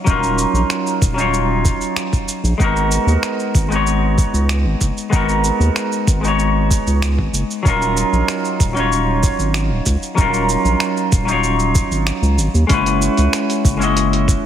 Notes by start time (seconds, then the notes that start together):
0.04 D#1 F#3 C#4 D#4, kick, shaker
0.10 F4 A#4
0.23 shaker
0.38 shaker
0.53 A#1, shaker
0.70 finger snap, shaker
0.87 shaker
1.02 D#1, kick, shaker
1.14 F#3 C#4 D#4
1.18 F4 C#5, shaker
1.34 shaker
1.65 kick, shaker
1.81 shaker
1.96 finger snap, shaker
2.13 kick, shaker
2.28 shaker
2.44 A#1, shaker
2.58 G#1 G#3 B3 D#4, kick, shaker
2.63 F#4 A#4
2.76 shaker
2.91 shaker
3.07 D#2, shaker
3.23 finger snap, shaker
3.39 shaker
3.55 G#1, kick, shaker
3.69 G#3 B3 D#4, shaker
3.73 F#4 C#5
3.87 shaker
4.18 kick, shaker
4.33 C#2, shaker
4.49 finger snap, shaker
4.65 G#1
4.81 F#1, kick, shaker
4.97 shaker
5.10 G#1 G#3 B3 D#4, kick, shaker
5.15 F#4 A#4
5.29 shaker
5.44 shaker
5.60 D#2, shaker
5.76 finger snap, shaker
5.92 shaker
6.07 G#1, kick, shaker
6.21 G#3 B3 D#4, shaker
6.26 F#4 C#5
6.39 shaker
6.71 kick, shaker
6.87 C#2, shaker
7.02 finger snap, shaker
7.19 G#1, kick
7.33 F#1, shaker
7.50 shaker
7.63 D#1 F#3 C#4 D#4, kick, shaker
7.68 F4 A#4
7.82 shaker
7.97 shaker
8.13 A#1, shaker
8.28 finger snap, shaker
8.45 shaker
8.60 D#1, kick, shaker
8.73 F#3 C#4 D#4, shaker
8.79 F4 C#5
8.92 shaker
9.23 kick, shaker
9.39 G#1, shaker
9.54 finger snap, shaker
9.70 D#1
9.86 C#2, kick, shaker
10.02 shaker
10.15 D#1 F#3 C#4 D#4, kick, shaker
10.20 F4 A#4
10.34 shaker
10.49 shaker
10.65 A#1, shaker
10.80 finger snap, shaker
10.97 shaker
11.12 D#1, kick, shaker
11.25 F#3 C#4 D#4, shaker
11.31 F4 C#5
11.43 shaker
11.59 shaker
11.75 kick, shaker
11.91 G#1, shaker
12.07 finger snap, shaker
12.22 C#2, shaker
12.37 G#1, shaker
12.54 D#2, shaker
12.67 F#1 G#3 C#4 E4, kick, closed hi-hat, shaker
12.72 F#4 B4
12.86 closed hi-hat, shaker
13.02 shaker
13.17 C#2, closed hi-hat, shaker
13.33 finger snap, closed hi-hat, shaker
13.50 closed hi-hat, shaker
13.65 F#1, kick, shaker
13.77 G#3 C#4 E4
13.81 F#4 D#5, shaker
13.97 closed hi-hat, shaker
14.13 closed hi-hat
14.28 kick, shaker